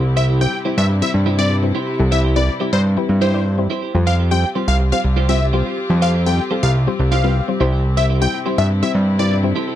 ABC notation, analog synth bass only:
X:1
M:4/4
L:1/16
Q:1/4=123
K:Flyd
V:1 name="Analog synth bass" clef=bass
C,,6 G,,3 G,,6- G,, | C,,6 G,,3 G,,6- G,, | F,,6 C,,3 C,,6- C,, | F,,6 C,,3 C,,4- C,, C,,2- |
C,,6 G,,3 G,,6- G,, |]